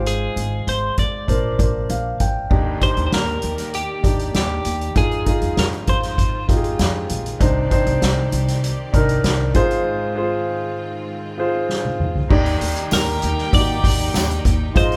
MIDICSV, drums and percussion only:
0, 0, Header, 1, 2, 480
1, 0, Start_track
1, 0, Key_signature, -3, "major"
1, 0, Tempo, 612245
1, 49, Time_signature, 4, 2, 24, 8
1, 11733, End_track
2, 0, Start_track
2, 0, Title_t, "Drums"
2, 49, Note_on_c, 9, 42, 74
2, 128, Note_off_c, 9, 42, 0
2, 289, Note_on_c, 9, 42, 60
2, 368, Note_off_c, 9, 42, 0
2, 530, Note_on_c, 9, 42, 72
2, 609, Note_off_c, 9, 42, 0
2, 764, Note_on_c, 9, 42, 53
2, 768, Note_on_c, 9, 36, 72
2, 843, Note_off_c, 9, 42, 0
2, 846, Note_off_c, 9, 36, 0
2, 1006, Note_on_c, 9, 36, 73
2, 1011, Note_on_c, 9, 42, 72
2, 1084, Note_off_c, 9, 36, 0
2, 1089, Note_off_c, 9, 42, 0
2, 1247, Note_on_c, 9, 36, 85
2, 1250, Note_on_c, 9, 42, 63
2, 1326, Note_off_c, 9, 36, 0
2, 1329, Note_off_c, 9, 42, 0
2, 1485, Note_on_c, 9, 42, 63
2, 1564, Note_off_c, 9, 42, 0
2, 1724, Note_on_c, 9, 42, 68
2, 1727, Note_on_c, 9, 36, 77
2, 1802, Note_off_c, 9, 42, 0
2, 1806, Note_off_c, 9, 36, 0
2, 1963, Note_on_c, 9, 49, 77
2, 1966, Note_on_c, 9, 36, 91
2, 2041, Note_off_c, 9, 49, 0
2, 2044, Note_off_c, 9, 36, 0
2, 2206, Note_on_c, 9, 42, 59
2, 2208, Note_on_c, 9, 36, 78
2, 2284, Note_off_c, 9, 42, 0
2, 2286, Note_off_c, 9, 36, 0
2, 2326, Note_on_c, 9, 42, 39
2, 2404, Note_off_c, 9, 42, 0
2, 2448, Note_on_c, 9, 38, 100
2, 2449, Note_on_c, 9, 42, 78
2, 2526, Note_off_c, 9, 38, 0
2, 2527, Note_off_c, 9, 42, 0
2, 2564, Note_on_c, 9, 42, 29
2, 2643, Note_off_c, 9, 42, 0
2, 2680, Note_on_c, 9, 42, 62
2, 2758, Note_off_c, 9, 42, 0
2, 2805, Note_on_c, 9, 38, 31
2, 2807, Note_on_c, 9, 42, 50
2, 2883, Note_off_c, 9, 38, 0
2, 2885, Note_off_c, 9, 42, 0
2, 2929, Note_on_c, 9, 42, 71
2, 3008, Note_off_c, 9, 42, 0
2, 3166, Note_on_c, 9, 36, 90
2, 3169, Note_on_c, 9, 42, 70
2, 3245, Note_off_c, 9, 36, 0
2, 3247, Note_off_c, 9, 42, 0
2, 3288, Note_on_c, 9, 42, 44
2, 3366, Note_off_c, 9, 42, 0
2, 3406, Note_on_c, 9, 42, 67
2, 3407, Note_on_c, 9, 38, 90
2, 3484, Note_off_c, 9, 42, 0
2, 3485, Note_off_c, 9, 38, 0
2, 3644, Note_on_c, 9, 42, 75
2, 3722, Note_off_c, 9, 42, 0
2, 3772, Note_on_c, 9, 42, 37
2, 3851, Note_off_c, 9, 42, 0
2, 3885, Note_on_c, 9, 42, 79
2, 3888, Note_on_c, 9, 36, 90
2, 3964, Note_off_c, 9, 42, 0
2, 3966, Note_off_c, 9, 36, 0
2, 4009, Note_on_c, 9, 42, 31
2, 4088, Note_off_c, 9, 42, 0
2, 4126, Note_on_c, 9, 42, 62
2, 4128, Note_on_c, 9, 36, 76
2, 4204, Note_off_c, 9, 42, 0
2, 4207, Note_off_c, 9, 36, 0
2, 4245, Note_on_c, 9, 42, 41
2, 4324, Note_off_c, 9, 42, 0
2, 4368, Note_on_c, 9, 38, 110
2, 4369, Note_on_c, 9, 42, 74
2, 4446, Note_off_c, 9, 38, 0
2, 4447, Note_off_c, 9, 42, 0
2, 4489, Note_on_c, 9, 42, 30
2, 4567, Note_off_c, 9, 42, 0
2, 4604, Note_on_c, 9, 42, 57
2, 4609, Note_on_c, 9, 36, 73
2, 4683, Note_off_c, 9, 42, 0
2, 4687, Note_off_c, 9, 36, 0
2, 4728, Note_on_c, 9, 38, 34
2, 4729, Note_on_c, 9, 42, 46
2, 4806, Note_off_c, 9, 38, 0
2, 4808, Note_off_c, 9, 42, 0
2, 4846, Note_on_c, 9, 36, 86
2, 4850, Note_on_c, 9, 42, 76
2, 4925, Note_off_c, 9, 36, 0
2, 4929, Note_off_c, 9, 42, 0
2, 5086, Note_on_c, 9, 36, 90
2, 5089, Note_on_c, 9, 42, 73
2, 5165, Note_off_c, 9, 36, 0
2, 5167, Note_off_c, 9, 42, 0
2, 5206, Note_on_c, 9, 42, 42
2, 5285, Note_off_c, 9, 42, 0
2, 5325, Note_on_c, 9, 42, 69
2, 5326, Note_on_c, 9, 38, 98
2, 5403, Note_off_c, 9, 42, 0
2, 5404, Note_off_c, 9, 38, 0
2, 5562, Note_on_c, 9, 42, 68
2, 5641, Note_off_c, 9, 42, 0
2, 5691, Note_on_c, 9, 42, 41
2, 5769, Note_off_c, 9, 42, 0
2, 5805, Note_on_c, 9, 42, 82
2, 5806, Note_on_c, 9, 36, 98
2, 5883, Note_off_c, 9, 42, 0
2, 5885, Note_off_c, 9, 36, 0
2, 6046, Note_on_c, 9, 42, 62
2, 6047, Note_on_c, 9, 36, 81
2, 6125, Note_off_c, 9, 42, 0
2, 6126, Note_off_c, 9, 36, 0
2, 6166, Note_on_c, 9, 42, 42
2, 6245, Note_off_c, 9, 42, 0
2, 6287, Note_on_c, 9, 38, 102
2, 6288, Note_on_c, 9, 42, 80
2, 6366, Note_off_c, 9, 38, 0
2, 6367, Note_off_c, 9, 42, 0
2, 6524, Note_on_c, 9, 42, 63
2, 6603, Note_off_c, 9, 42, 0
2, 6649, Note_on_c, 9, 38, 34
2, 6651, Note_on_c, 9, 42, 50
2, 6727, Note_off_c, 9, 38, 0
2, 6729, Note_off_c, 9, 42, 0
2, 6772, Note_on_c, 9, 42, 72
2, 6850, Note_off_c, 9, 42, 0
2, 7007, Note_on_c, 9, 36, 95
2, 7008, Note_on_c, 9, 42, 66
2, 7085, Note_off_c, 9, 36, 0
2, 7086, Note_off_c, 9, 42, 0
2, 7126, Note_on_c, 9, 42, 49
2, 7204, Note_off_c, 9, 42, 0
2, 7244, Note_on_c, 9, 42, 70
2, 7246, Note_on_c, 9, 38, 106
2, 7323, Note_off_c, 9, 42, 0
2, 7324, Note_off_c, 9, 38, 0
2, 7483, Note_on_c, 9, 42, 68
2, 7486, Note_on_c, 9, 36, 90
2, 7561, Note_off_c, 9, 42, 0
2, 7565, Note_off_c, 9, 36, 0
2, 7610, Note_on_c, 9, 42, 39
2, 7688, Note_off_c, 9, 42, 0
2, 9167, Note_on_c, 9, 38, 56
2, 9246, Note_off_c, 9, 38, 0
2, 9289, Note_on_c, 9, 48, 61
2, 9367, Note_off_c, 9, 48, 0
2, 9407, Note_on_c, 9, 45, 92
2, 9486, Note_off_c, 9, 45, 0
2, 9527, Note_on_c, 9, 43, 84
2, 9605, Note_off_c, 9, 43, 0
2, 9644, Note_on_c, 9, 49, 93
2, 9647, Note_on_c, 9, 36, 100
2, 9723, Note_off_c, 9, 49, 0
2, 9726, Note_off_c, 9, 36, 0
2, 9768, Note_on_c, 9, 46, 52
2, 9846, Note_off_c, 9, 46, 0
2, 9885, Note_on_c, 9, 44, 63
2, 9886, Note_on_c, 9, 46, 64
2, 9963, Note_off_c, 9, 44, 0
2, 9964, Note_off_c, 9, 46, 0
2, 10003, Note_on_c, 9, 44, 64
2, 10082, Note_off_c, 9, 44, 0
2, 10123, Note_on_c, 9, 54, 80
2, 10126, Note_on_c, 9, 44, 60
2, 10129, Note_on_c, 9, 38, 113
2, 10130, Note_on_c, 9, 46, 89
2, 10201, Note_off_c, 9, 54, 0
2, 10205, Note_off_c, 9, 44, 0
2, 10207, Note_off_c, 9, 38, 0
2, 10208, Note_off_c, 9, 46, 0
2, 10364, Note_on_c, 9, 46, 67
2, 10367, Note_on_c, 9, 44, 58
2, 10442, Note_off_c, 9, 46, 0
2, 10445, Note_off_c, 9, 44, 0
2, 10489, Note_on_c, 9, 38, 36
2, 10567, Note_off_c, 9, 38, 0
2, 10608, Note_on_c, 9, 36, 96
2, 10608, Note_on_c, 9, 44, 63
2, 10613, Note_on_c, 9, 46, 84
2, 10686, Note_off_c, 9, 36, 0
2, 10686, Note_off_c, 9, 44, 0
2, 10691, Note_off_c, 9, 46, 0
2, 10849, Note_on_c, 9, 36, 96
2, 10850, Note_on_c, 9, 44, 70
2, 10854, Note_on_c, 9, 46, 79
2, 10927, Note_off_c, 9, 36, 0
2, 10929, Note_off_c, 9, 44, 0
2, 10932, Note_off_c, 9, 46, 0
2, 10972, Note_on_c, 9, 46, 48
2, 11050, Note_off_c, 9, 46, 0
2, 11087, Note_on_c, 9, 46, 80
2, 11088, Note_on_c, 9, 38, 99
2, 11089, Note_on_c, 9, 44, 63
2, 11097, Note_on_c, 9, 54, 82
2, 11165, Note_off_c, 9, 46, 0
2, 11166, Note_off_c, 9, 38, 0
2, 11167, Note_off_c, 9, 44, 0
2, 11175, Note_off_c, 9, 54, 0
2, 11209, Note_on_c, 9, 44, 62
2, 11288, Note_off_c, 9, 44, 0
2, 11327, Note_on_c, 9, 46, 78
2, 11330, Note_on_c, 9, 36, 88
2, 11330, Note_on_c, 9, 44, 65
2, 11406, Note_off_c, 9, 46, 0
2, 11408, Note_off_c, 9, 36, 0
2, 11408, Note_off_c, 9, 44, 0
2, 11570, Note_on_c, 9, 36, 106
2, 11572, Note_on_c, 9, 46, 92
2, 11573, Note_on_c, 9, 44, 57
2, 11648, Note_off_c, 9, 36, 0
2, 11650, Note_off_c, 9, 46, 0
2, 11651, Note_off_c, 9, 44, 0
2, 11696, Note_on_c, 9, 46, 48
2, 11733, Note_off_c, 9, 46, 0
2, 11733, End_track
0, 0, End_of_file